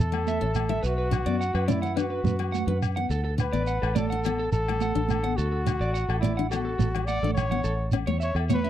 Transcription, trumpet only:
0.00 0.80 A4 medium
0.85 1.72 F#4 medium
1.70 1.97 E4 medium
1.98 2.79 F#4 medium
3.40 3.98 B4 medium
3.97 4.51 A4 medium
4.52 5.38 A4 medium
5.36 6.19 F#4 loud
6.19 6.48 E4 medium
6.50 7.07 F#4 medium
7.06 7.33 D5 loud
7.34 7.89 C#5 loud
8.23 8.35 C#5 medium
8.53 8.70 B4 loud

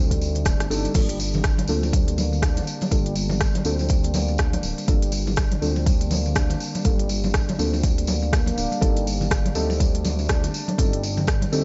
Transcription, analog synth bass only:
0.00 0.45 D2 medium
0.46 0.55 D1 loud
0.60 0.67 G1 medium
0.70 0.88 G1 loud
0.95 1.63 G1 loud
1.68 2.61 D2 medium
2.92 3.60 G1 loud
3.65 4.58 D2 medium
4.63 4.73 D1 loud
4.88 5.56 G1 loud
5.62 6.55 D2 medium
6.85 7.53 G1 loud
7.59 8.51 D2 medium
8.58 8.67 D1 loud
8.82 9.50 G1 loud
9.56 10.48 D2 medium
10.79 11.47 G1 loud
11.52 11.64 D2 medium

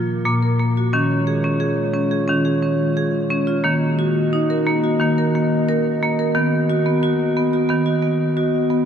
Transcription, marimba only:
0.00 0.25 F3 medium
0.00 0.25 F4 medium
0.25 0.84 A#2 medium
0.25 0.43 A#3 medium
0.43 0.59 A#4 soft
0.59 0.77 A#3 medium
0.77 0.94 F#4 medium
0.93 2.10 D#3 medium
0.93 1.27 C#4 medium
1.27 1.44 G#4 medium
1.44 1.61 C#4 medium
1.60 1.95 G#4 medium
1.94 2.12 C#4 medium
2.11 2.29 G#4 medium
2.28 3.46 D#3 medium
2.28 2.46 C#4 medium
2.45 2.63 G#4 medium
2.62 2.97 C#4 medium
2.97 3.31 G#4 medium
3.30 3.48 C#4 medium
3.47 3.64 F4 medium
3.64 4.81 D#3 medium
3.64 3.98 A#3 medium
3.99 4.33 F#4 medium
4.33 4.50 D#4 medium
4.50 4.67 A#4 medium
4.67 4.84 A#3 medium
4.84 5.00 F#4 medium
4.99 6.16 D#3 medium
4.99 5.18 A#3 medium
5.18 5.35 A#4 medium
5.35 5.68 A#3 medium
5.69 6.02 A#4 medium
6.03 6.19 A#3 medium
6.19 6.35 A#4 medium
6.35 7.51 D#3 medium
6.35 6.69 B3 medium
6.70 6.86 F#4 medium
6.86 7.03 B3 medium
7.03 7.36 F#4 medium
7.36 7.53 B3 medium
7.53 7.70 F#4 medium
7.69 8.85 D#3 medium
7.69 7.86 B3 medium
7.86 8.03 F#4 medium
8.02 8.36 B3 medium
8.37 8.71 F#4 medium
8.70 8.85 B3 medium

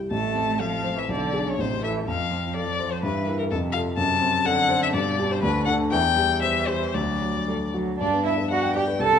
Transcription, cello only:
0.11 0.62 A3 medium
0.61 0.96 F3 medium
0.96 1.01 E3 soft
1.08 1.45 D3 medium
1.46 1.51 C#3 medium
1.58 1.82 C3 medium
1.83 2.06 E3 medium
2.07 3.05 F3 medium
3.03 3.51 E3 medium
3.51 3.96 C3 medium
3.97 4.47 C3 medium
4.46 4.94 D3 medium
4.93 5.44 B2 medium
5.42 5.91 D3 medium
5.92 6.00 E3 medium
6.15 6.95 E3 medium
6.93 7.42 F#3 medium
7.47 7.55 G3 medium
7.75 7.99 F#3 medium
7.99 8.23 D4 medium
8.25 8.33 E4 medium
8.51 8.74 F#4 medium
8.75 8.83 G4 medium
9.01 9.19 A4 loud

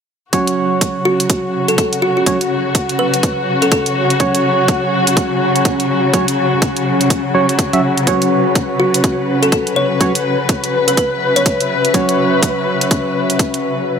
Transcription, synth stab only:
0.33 2.24 F#3 medium
0.33 2.24 C#4 medium
0.33 2.24 F#4 medium
0.33 2.24 C#5 loud
2.26 2.38 F#3 medium
2.26 2.38 C#4 medium
2.26 2.38 F#4 medium
2.26 2.38 C#5 loud
4.20 6.11 F#3 medium
4.20 6.11 C#4 medium
4.20 6.11 F#4 medium
4.20 6.11 C#5 loud
6.14 6.25 F#3 medium
6.14 6.25 C#4 medium
6.14 6.26 F#4 medium
6.14 6.25 C#5 loud
7.34 7.46 F#3 medium
7.34 7.46 C#4 medium
7.34 7.46 F#4 medium
7.34 7.46 C#5 medium
7.73 7.81 F#3 medium
7.73 7.81 C#4 medium
7.73 7.81 F#4 medium
7.73 7.81 E5 medium
8.07 9.98 F#3 medium
8.07 9.98 C#4 medium
8.07 9.98 F#4 medium
8.07 9.98 C#5 loud
10.01 10.13 F#3 loud
10.01 10.13 C#4 medium
10.01 10.13 F#4 medium
10.01 10.13 C#5 loud
11.94 13.85 F#3 medium
11.94 13.85 C#4 medium
11.94 13.85 F#4 medium
11.94 13.85 C#5 loud

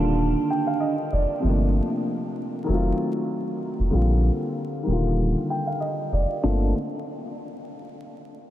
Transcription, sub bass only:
0.00 0.34 D#1 loud
1.13 1.25 F1 loud
1.44 1.80 G1 loud
2.69 2.92 F1 loud
3.79 3.90 F1 medium
3.94 4.30 A#1 loud
4.88 5.35 D#1 loud
6.12 6.25 F1 loud
6.44 6.73 G1 loud

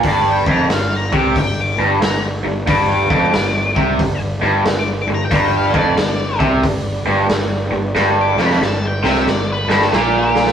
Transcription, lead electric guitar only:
0.08 0.28 D5 loud
0.31 0.50 G5 medium
0.51 0.71 A#5 medium
0.73 0.93 F5 medium
0.96 1.16 A#5 medium
1.18 1.38 D6 medium
1.39 1.59 G5 medium
1.61 1.81 D6 medium
2.04 2.24 A#5 loud
2.70 2.90 D6 medium
2.92 4.19 D6 loud
4.79 4.87 D6 loud
5.02 5.06 D6 loud
5.14 5.24 A#5 medium
5.24 5.32 G5 medium
5.35 5.48 A#5 medium
5.45 5.57 G5 medium
5.57 5.76 F5 loud
5.69 5.73 D5 medium
5.78 6.41 D5 loud
8.21 8.41 D6 loud
8.42 8.62 B5 medium
8.64 8.84 A5 medium
8.87 9.07 G5 medium
9.08 9.28 E5 medium
9.29 9.50 D5 loud
9.52 9.72 B4 loud
9.75 9.95 A4 medium
9.98 10.17 G4 loud
10.19 10.52 G4 loud

